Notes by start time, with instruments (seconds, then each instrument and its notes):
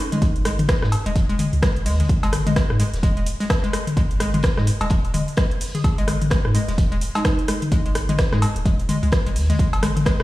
0.00 marimba C#4
0.12 synth arpeggio sound G#3, closed hi-hat, high tom
0.22 sub bass G#1, synth arpeggio sound G#3, kick, closed hi-hat
0.36 closed hi-hat
0.45 synth arpeggio sound G#3, cross-stick, closed hi-hat, open hi-hat
0.59 closed hi-hat, mid tom
0.69 synth arpeggio sound G#3, kick, cross-stick, snare, closed hi-hat
0.82 sub bass G#2, synth arpeggio sound G#3, cross-stick, snare
0.92 closed hi-hat, open hi-hat, cowbell
1.06 sub bass D#1, synth arpeggio sound G#3, closed hi-hat
1.16 kick, closed hi-hat
1.29 synth arpeggio sound G#3, closed hi-hat
1.39 synth arpeggio sound G#3, closed hi-hat, open hi-hat, high tom
1.53 sub bass C#2, open hi-hat
1.62 synth arpeggio sound G#3, kick, cross-stick, snare, closed hi-hat
1.76 sub bass G#1, closed hi-hat
1.86 sub bass D#2, synth arpeggio sound G#3, open hi-hat
2.00 synth arpeggio sound G#3, closed hi-hat, high tom
2.09 sub bass G#1, kick, closed hi-hat
2.23 synth arpeggio sound G#3, closed hi-hat, cowbell
2.33 cross-stick, closed hi-hat, open hi-hat, high tom
2.47 synth arpeggio sound G#3, closed hi-hat, mid tom
2.56 synth arpeggio sound G#3, kick, cross-stick, snare, closed hi-hat
2.70 sub bass G#2, cross-stick
2.79 synth arpeggio sound G#3, closed hi-hat, open hi-hat
2.94 sub bass D#1, snare, closed hi-hat
3.03 synth arpeggio sound G#3, kick, closed hi-hat
3.17 synth arpeggio sound G#3, closed hi-hat
3.26 sub bass F#1, closed hi-hat, open hi-hat
3.40 synth arpeggio sound G#3, snare, open hi-hat
3.50 kick, cross-stick, snare, closed hi-hat, cowbell
3.64 synth arpeggio sound G#3, closed hi-hat
3.73 synth arpeggio sound G#3, cross-stick, closed hi-hat, open hi-hat
3.87 closed hi-hat, high tom
3.97 sub bass G#1, synth arpeggio sound G#3, kick, closed hi-hat
4.11 closed hi-hat
4.20 synth arpeggio sound G#3, cross-stick, closed hi-hat, open hi-hat
4.34 synth arpeggio sound G#3, closed hi-hat, mid tom
4.42 kick, cross-stick, snare, closed hi-hat
4.57 sub bass G#2, synth arpeggio sound G#3, cross-stick, snare
4.67 closed hi-hat, open hi-hat
4.81 sub bass D#1, synth arpeggio sound G#3, closed hi-hat, cowbell
4.90 synth arpeggio sound G#3, kick, closed hi-hat
5.05 closed hi-hat
5.14 sub bass D#1, synth arpeggio sound G#3, closed hi-hat, open hi-hat, high tom
5.28 open hi-hat
5.37 synth arpeggio sound G#3, kick, cross-stick, snare, closed hi-hat
5.51 sub bass F#1, closed hi-hat
5.61 open hi-hat
5.75 synth arpeggio sound G#4, closed hi-hat, high tom
5.84 sub bass G#1, kick, closed hi-hat, cowbell
5.98 synth arpeggio sound G#3, closed hi-hat
6.08 synth arpeggio sound G#3, cross-stick, closed hi-hat, open hi-hat, high tom
6.22 closed hi-hat, mid tom
6.30 synth arpeggio sound G#3, kick, cross-stick, snare, closed hi-hat
6.45 sub bass G#2, cross-stick
6.55 synth arpeggio sound G#3, closed hi-hat, open hi-hat
6.68 sub bass D#1, synth arpeggio sound G#3, snare, closed hi-hat
6.78 kick, closed hi-hat
6.92 synth arpeggio sound G#3, closed hi-hat
7.01 sub bass F#1, closed hi-hat, open hi-hat
7.15 synth arpeggio sound G#3, marimba D#4, snare, open hi-hat, cowbell
7.25 synth arpeggio sound G#3, marimba D#4, kick, cross-stick, snare, closed hi-hat
7.39 closed hi-hat
7.48 synth arpeggio sound G#3, cross-stick, closed hi-hat, open hi-hat
7.62 closed hi-hat, high tom
7.72 sub bass G#1, synth arpeggio sound G#3, kick, closed hi-hat
7.86 synth arpeggio sound G#3, closed hi-hat
7.95 cross-stick, closed hi-hat, open hi-hat
8.09 synth arpeggio sound G#3, closed hi-hat, mid tom
8.18 kick, cross-stick, snare, closed hi-hat
8.32 sub bass G#2, synth arpeggio sound G#3, cross-stick, snare
8.42 synth arpeggio sound G#3, closed hi-hat, open hi-hat, cowbell
8.56 sub bass D#1, closed hi-hat
8.65 synth arpeggio sound G#3, kick, closed hi-hat
8.79 closed hi-hat
8.89 synth arpeggio sound G#3, closed hi-hat, open hi-hat, high tom
9.03 sub bass C#2, synth arpeggio sound G#3, open hi-hat
9.12 kick, cross-stick, snare, closed hi-hat
9.26 sub bass G#1, synth arpeggio sound G#3, closed hi-hat
9.36 sub bass D#2, open hi-hat
9.50 synth arpeggio sound G#3, closed hi-hat, high tom
9.59 sub bass G#1, synth arpeggio sound G#3, kick, closed hi-hat
9.73 closed hi-hat, cowbell
9.83 synth arpeggio sound G#3, cross-stick, closed hi-hat, open hi-hat, high tom
9.97 closed hi-hat, mid tom
10.05 synth arpeggio sound G#3, kick, cross-stick, snare, closed hi-hat
10.20 sub bass G#2, synth arpeggio sound G#3, cross-stick